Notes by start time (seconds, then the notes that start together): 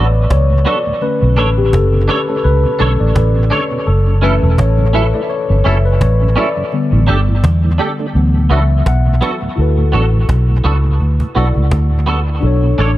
Already playing: A1 E3 F#3 B3 B4 C#5 D5 E5
0.15 cajon slap
0.30 C#2 C#5, cajon bass, cajon slap
0.50 D2 A2, cajon slap
0.65 F#3 B3 D4 F#4 A4 D5
0.86 D2 A2, cajon slap
1.01 D3 A3 C#4 B4, cajon slap
1.22 B1 B2
1.37 A1 D3 A3 C#4 D4 A4 B4 C#5, cajon slap
1.58 B2 G4
1.73 F#1 A4, cajon bass, cajon slap
1.93 B2, cajon slap
2.08 D3 A3 C#4 D4 A4 B4 C#5, cajon slap
2.28 A3 C#4 A4, cajon slap
2.44 C#2 B4, cajon slap
2.65 B2
2.79 B1 D3 A3 C#4 D4 A4 C#5, cajon slap
3.00 A1 D5, cajon slap
3.15 A1 B4, cajon bass, cajon slap
3.36 B2, cajon slap
3.50 D3 A3 C#4 D4 A4 C#5
3.71 B2, cajon slap
3.87 F#1 A4, cajon slap
4.07 F#2 C#3
4.22 E3 F#3 A3 C#4 E4 A4 B4, cajon slap
4.43 E1 F#2 C#3 A4
4.58 A1 C#5, cajon bass, cajon slap
4.78 F#2 C#3, cajon slap
4.93 F#3 A3 C#4 E4 A4 B4, cajon slap
5.14 A3 E4 D5, cajon slap
5.30 C#5, cajon slap
5.50 G1 F#2 C#3
5.64 F#1 F#3 A3 C#4 E4 A4 E5, cajon slap
5.85 B4, cajon slap
6.01 A1 C#5, cajon bass, cajon slap
6.21 F#2 C#3, cajon slap
6.36 F#3 A3 C#4 E4 A4 D5
6.56 F#2 C#3, cajon slap
6.72 D3 G3 B3, cajon slap
6.93 A1 A2 E3
7.07 G1 G3 A3 D4 G4 A4, cajon slap
7.29 A2 E3
7.44 E2, cajon bass, cajon slap
7.63 A2 E3, cajon slap
7.78 G3 A3 D4 G4 A4, cajon slap
7.99 A3 D4, cajon slap
8.15 D2 E3 F#3 B3, cajon slap
8.35 D2 A2
8.50 C#2 F#3 B3 D4 F#4 A4 E5, cajon slap
8.70 cajon slap
8.86 B1 F#5, cajon bass, cajon slap
9.06 D2 A2, cajon slap
9.21 F#3 B3 D4 F#4 A4, cajon slap
9.41 D2 A2, cajon slap
9.56 D2 E4 F#4 A4, cajon slap
9.61 B4
9.78 D2 A2, cajon slap
9.92 A1 F#3 B3 D4 F#4 A4, cajon slap
10.13 D2 A2
10.29 B1, cajon bass, cajon slap
10.48 D2 A2, cajon slap
10.64 C#2 F#3 B3 D4 F#4 A4, cajon slap
10.84 D2 A2, cajon slap
11.01 D2, cajon slap
11.20 D2 A2, cajon bass
11.35 B1 F#3 B3 D4 E4 F#4 A4 D5, cajon slap
11.55 C#2 D2 A2, cajon slap
11.71 D2, cajon bass, cajon slap
11.91 D2 A2, cajon slap
12.06 F#3 B3 D4 F#4 A4, cajon slap
12.27 muted clean electric guitar stroke
12.40 B1 D4 F#4 A4, cajon slap
12.46 C#5
12.63 B2, cajon slap
12.78 A1 D3 A3 C#4 D4 A4 C#5, cajon slap